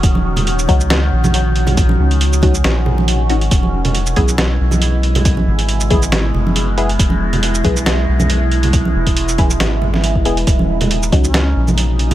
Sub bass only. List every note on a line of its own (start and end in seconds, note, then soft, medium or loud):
0.03 0.67 D#1 medium
0.69 1.11 C#2 loud
1.12 1.98 A#1 medium
1.99 2.63 C#2 medium
2.64 3.24 A#1 medium
3.24 3.50 A1 medium
3.52 4.15 E1 medium
4.17 4.59 B1 loud
4.60 5.46 B1 loud
5.47 6.32 G#1 medium
6.34 6.98 F#1 medium
6.99 7.63 E1 medium
7.65 8.06 B1 loud
8.08 8.93 B1 medium
8.95 9.59 E1 medium
9.60 10.24 G#1 medium
10.25 10.45 E1 loud
11.12 11.54 C#2 loud
11.56 12.14 A#1 medium